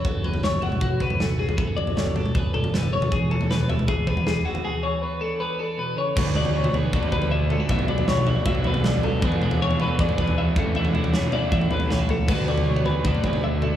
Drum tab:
CC |----------------|----------------|----------------|----------------|
SD |----o-------o---|----o-------o---|----o-------o---|----------------|
T2 |------oo--o-----|------oo--o----o|------oo--o-----|----------------|
FT |o-ooooo-o--o---o|o-ooooo-o--o-o-o|o-ooooo-o--o---o|----------------|
BD |o-------o-o-----|o-------o-------|o-------o-o-----|----------------|

CC |x---------------|----------------|----------------|----------------|
SD |----------------|----o-------o---|----------------|----o-------o---|
T2 |-oo-----------o-|-oo---------o-o-|-oo-----------o-|-oo-------------|
FT |o--o-oo-oooo----|o--o-oo-oooo-o--|o--o-oo-oooo----|o--o-oo-oooo--o-|
BD |o-------o-o-----|o-------o-------|o-------o-o---o-|--------o-------|

CC |x---------------|
SD |----------------|
T2 |-oo-----------o-|
FT |o--o-oo-oooo----|
BD |o-------o-o-----|